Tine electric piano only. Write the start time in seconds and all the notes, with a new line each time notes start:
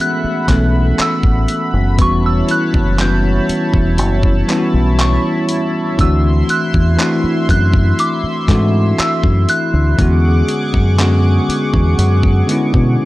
Already playing: E3 G#3 A3 B3 C#4 F#4 G#4
0.48 E3 A3 B3 C#4
0.52 A4
1.97 E3 G3 B3 C#4
2.02 F#4
2.97 E3 G3 B3 C#4
3.02 F#4
4.47 E3 G3 B3 C#4
4.51 E4
4.58 F#4
5.97 E3 A3 C4 D4
6.02 F#4
6.97 E3 A3 C4 D4
7.02 F#4
8.47 E3 C4 D4 A4
8.52 F#4
9.97 D3 G#3 B3 C#4
10.02 F#4
10.97 D3 G#3 B3 C#4
11.02 F#4
12.47 D3 G#3 B3 C#4
12.52 E4